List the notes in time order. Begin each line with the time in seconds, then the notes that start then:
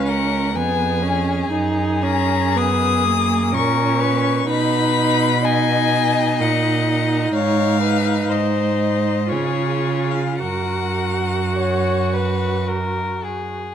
Already playing: C#2 C#4
0.06 A#4 F#5
0.54 F2 B3 G#4 G#5
1.02 C#4
1.51 F#2 D#4
2.03 C#4 A#5
2.56 B3 D#6
3.06 A#3
3.53 A#2 C#4 A#4 C#6
4.00 B4
4.48 B2 D#4 B4 B5
5.46 D#4 D#5 G#5
6.40 A#2 F#5
7.34 G#2 C#5 F5
7.81 B4
8.29 G#2 C5 D#5
9.29 C#3 F4 G#4 C#5
10.11 F5
10.39 F#2 F#4 A#4 F#5
11.57 C#5
12.13 B4
12.68 A#4
13.24 G#4